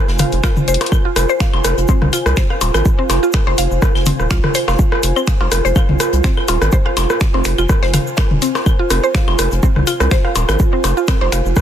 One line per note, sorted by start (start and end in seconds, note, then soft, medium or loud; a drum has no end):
0.00 11.61 F4 medium
0.00 11.61 C5 medium
0.00 11.61 G#5 medium
0.08 0.25 F1 medium
0.08 snare medium
0.19 0.26 F5 medium
0.19 cross-stick soft
0.19 open hi-hat medium
0.19 mid tom loud
0.19 cabasa medium
0.19 shaker medium
0.32 0.40 F1 loud
0.32 open hi-hat soft
0.32 cabasa soft
0.43 0.47 F4 loud
0.43 finger snap loud
0.43 kick loud
0.43 cross-stick medium
0.43 snare loud
0.43 cabasa soft
0.43 claves medium
0.43 shaker medium
0.57 mid tom medium
0.57 cabasa soft
0.68 0.77 F1 medium
0.68 0.74 C5 medium
0.68 closed hi-hat medium
0.68 cabasa medium
0.68 shaker medium
0.74 closed hi-hat medium
0.81 cross-stick soft
0.81 snare soft
0.81 closed hi-hat medium
0.81 cabasa soft
0.81 percussion blips medium
0.86 closed hi-hat medium
0.92 kick loud
0.92 cross-stick soft
0.92 cabasa medium
0.92 claves medium
0.92 shaker medium
1.05 1.10 F4 medium
1.16 1.25 F1 loud
1.16 cross-stick medium
1.16 open hi-hat medium
1.16 cabasa medium
1.16 shaker medium
1.29 1.32 C5 loud
1.29 cabasa soft
1.40 1.46 F5 medium
1.40 finger snap medium
1.40 kick loud
1.40 cross-stick soft
1.40 snare loud
1.40 cabasa medium
1.40 shaker medium
1.53 1.61 F1 loud
1.53 claves medium
1.53 percussion blips medium
1.64 1.74 F1 medium
1.64 cross-stick medium
1.64 open hi-hat medium
1.64 cabasa medium
1.64 shaker medium
1.78 1.85 F1 medium
1.78 closed hi-hat soft
1.78 cabasa soft
1.88 1.95 C4 medium
1.88 kick loud
1.88 cabasa medium
1.88 shaker medium
2.02 2.10 C2 medium
2.02 cross-stick soft
2.02 mid tom loud
2.13 2.19 F4 medium
2.13 open hi-hat medium
2.13 cabasa loud
2.13 claves medium
2.13 shaker medium
2.26 2.34 C2 medium
2.26 cross-stick medium
2.26 closed hi-hat soft
2.26 cabasa soft
2.37 2.41 C5 loud
2.37 finger snap loud
2.37 kick loud
2.37 snare loud
2.37 cabasa medium
2.37 shaker medium
2.50 2.55 F5 medium
2.50 cross-stick soft
2.61 2.71 D#1 medium
2.61 open hi-hat medium
2.61 cabasa loud
2.61 percussion blips medium
2.61 shaker medium
2.74 2.82 G#1 loud
2.74 cross-stick medium
2.74 closed hi-hat soft
2.74 cabasa soft
2.74 claves medium
2.85 kick loud
2.85 cabasa medium
2.85 shaker loud
2.99 3.04 C4 medium
3.10 3.19 F1 loud
3.10 cross-stick soft
3.10 snare medium
3.10 open hi-hat medium
3.10 cabasa medium
3.10 percussion blips medium
3.10 shaker medium
3.23 3.28 F4 medium
3.23 cabasa soft
3.33 finger snap loud
3.33 kick loud
3.33 cross-stick medium
3.33 snare loud
3.33 cabasa medium
3.33 claves medium
3.33 shaker medium
3.47 3.55 F1 loud
3.47 3.50 C5 loud
3.47 percussion blips medium
3.58 3.67 F1 medium
3.58 3.64 F5 medium
3.58 open hi-hat loud
3.58 cabasa medium
3.58 shaker medium
3.71 3.79 F1 medium
3.71 cabasa soft
3.82 kick loud
3.82 cross-stick medium
3.82 cabasa medium
3.82 shaker medium
3.95 4.12 F1 medium
3.95 snare soft
3.95 claves medium
4.06 4.13 C4 medium
4.06 open hi-hat loud
4.06 mid tom loud
4.06 cabasa loud
4.06 shaker medium
4.20 4.27 D#1 medium
4.20 cross-stick soft
4.20 cabasa soft
4.30 4.40 C2 medium
4.30 4.37 F4 medium
4.30 finger snap loud
4.30 kick loud
4.30 snare loud
4.30 cabasa medium
4.30 shaker medium
4.44 cross-stick medium
4.44 mid tom medium
4.54 4.58 C5 loud
4.54 open hi-hat loud
4.54 cabasa medium
4.54 claves medium
4.54 shaker medium
4.68 4.76 F1 medium
4.68 4.73 F5 medium
4.68 cross-stick soft
4.68 snare soft
4.68 cabasa soft
4.68 percussion blips medium
4.79 kick loud
4.79 cabasa medium
4.79 shaker medium
4.92 cross-stick medium
5.03 5.13 F1 loud
5.03 open hi-hat loud
5.03 cabasa loud
5.03 shaker medium
5.16 5.22 C4 medium
5.16 cabasa soft
5.16 claves medium
5.27 finger snap loud
5.27 kick loud
5.27 cross-stick soft
5.27 snare loud
5.27 cabasa medium
5.27 shaker medium
5.41 5.48 F1 loud
5.41 5.46 F4 medium
5.41 percussion blips medium
5.51 5.61 F1 medium
5.51 cross-stick medium
5.51 open hi-hat loud
5.51 cabasa loud
5.51 shaker medium
5.65 5.73 F1 medium
5.65 5.68 C5 loud
5.65 closed hi-hat soft
5.65 cabasa soft
5.76 5.82 F5 medium
5.76 kick loud
5.76 cross-stick soft
5.76 cabasa medium
5.76 claves medium
5.76 shaker medium
5.89 5.97 C2 medium
5.89 mid tom medium
5.99 cross-stick medium
5.99 open hi-hat medium
5.99 cabasa medium
5.99 shaker medium
6.13 6.21 C2 medium
6.13 closed hi-hat soft
6.13 cabasa soft
6.24 6.30 C4 medium
6.24 finger snap loud
6.24 kick loud
6.24 snare loud
6.24 cabasa medium
6.24 shaker medium
6.37 cross-stick soft
6.37 claves medium
6.48 6.58 D#1 medium
6.48 6.55 F4 medium
6.48 open hi-hat loud
6.48 cabasa loud
6.48 percussion blips medium
6.48 shaker medium
6.61 6.69 G#1 loud
6.61 cross-stick medium
6.61 closed hi-hat soft
6.61 cabasa soft
6.72 6.76 C5 loud
6.72 kick loud
6.72 cabasa medium
6.72 shaker medium
6.86 6.91 F5 medium
6.86 cross-stick soft
6.97 7.06 F1 loud
6.97 snare soft
6.97 open hi-hat loud
6.97 cabasa loud
6.97 claves medium
6.97 percussion blips medium
6.97 shaker medium
7.10 cross-stick medium
7.10 cabasa soft
7.21 finger snap medium
7.21 kick loud
7.21 snare loud
7.21 cabasa medium
7.21 shaker medium
7.34 7.42 F1 loud
7.34 7.39 C4 medium
7.34 percussion blips medium
7.44 7.55 F1 medium
7.44 finger snap medium
7.44 cross-stick soft
7.44 open hi-hat loud
7.44 cabasa medium
7.44 shaker medium
7.58 7.66 F1 medium
7.58 7.63 F4 medium
7.58 cabasa soft
7.58 claves medium
7.69 kick loud
7.69 cross-stick medium
7.69 cabasa medium
7.69 shaker medium
7.82 7.99 F1 medium
7.82 7.86 C5 loud
7.82 snare soft
7.94 8.00 F5 medium
7.94 cross-stick soft
7.94 open hi-hat loud
7.94 mid tom loud
7.94 cabasa loud
7.94 shaker medium
8.07 cabasa soft
8.17 finger snap medium
8.17 kick loud
8.17 cross-stick medium
8.17 snare loud
8.17 cabasa medium
8.17 claves medium
8.17 shaker medium
8.31 8.39 D#1 medium
8.31 mid tom medium
8.42 8.48 C4 medium
8.42 open hi-hat medium
8.42 cabasa loud
8.42 shaker medium
8.55 cross-stick soft
8.55 snare soft
8.55 cabasa soft
8.55 percussion blips medium
8.66 kick loud
8.66 cross-stick soft
8.66 cabasa soft
8.66 claves medium
8.66 shaker medium
8.79 8.84 F4 medium
8.90 9.00 F1 loud
8.90 8.96 C4 medium
8.90 cross-stick medium
8.90 open hi-hat medium
8.90 cabasa loud
8.90 shaker medium
9.03 9.07 C5 loud
9.03 cabasa soft
9.14 9.21 F5 medium
9.14 finger snap medium
9.14 kick loud
9.14 cross-stick soft
9.14 snare loud
9.14 cabasa medium
9.14 shaker medium
9.28 9.36 F1 loud
9.28 claves medium
9.28 percussion blips medium
9.39 9.48 F1 medium
9.39 cross-stick medium
9.39 open hi-hat medium
9.39 cabasa loud
9.39 shaker medium
9.51 9.60 F1 medium
9.51 closed hi-hat soft
9.51 cabasa soft
9.63 9.69 C4 medium
9.63 kick loud
9.63 cabasa medium
9.63 shaker medium
9.76 9.84 C2 medium
9.76 cross-stick soft
9.76 mid tom medium
9.87 9.93 F4 medium
9.87 open hi-hat medium
9.87 cabasa loud
9.87 claves medium
9.87 shaker medium
10.00 10.08 C2 medium
10.00 10.05 C4 medium
10.00 cross-stick medium
10.00 closed hi-hat soft
10.00 cabasa soft
10.11 10.15 C5 loud
10.11 finger snap medium
10.11 kick loud
10.11 snare loud
10.11 cabasa soft
10.11 shaker medium
10.24 10.30 F5 medium
10.24 cross-stick soft
10.35 10.45 D#1 medium
10.35 open hi-hat medium
10.35 cabasa loud
10.35 percussion blips medium
10.35 shaker medium
10.49 10.56 G#1 loud
10.49 cross-stick medium
10.49 closed hi-hat soft
10.49 cabasa soft
10.49 claves medium
10.59 kick loud
10.59 cabasa soft
10.59 shaker loud
10.73 10.78 C4 medium
10.84 10.93 F1 loud
10.84 cross-stick soft
10.84 snare medium
10.84 open hi-hat medium
10.84 cabasa medium
10.84 percussion blips medium
10.84 shaker medium
10.97 11.02 F4 medium
10.97 cabasa soft
11.08 11.14 C4 medium
11.08 finger snap medium
11.08 kick loud
11.08 cross-stick medium
11.08 snare loud
11.08 cabasa medium
11.08 claves medium
11.08 shaker loud
11.21 11.29 F1 loud
11.21 11.24 C5 medium
11.21 percussion blips medium
11.32 11.42 F1 medium
11.32 11.38 F5 medium
11.32 finger snap medium
11.32 cross-stick soft
11.32 open hi-hat medium
11.32 cabasa loud
11.32 shaker medium
11.45 11.53 F1 medium
11.45 cabasa soft
11.56 kick loud
11.56 cross-stick medium
11.56 cabasa medium
11.56 shaker loud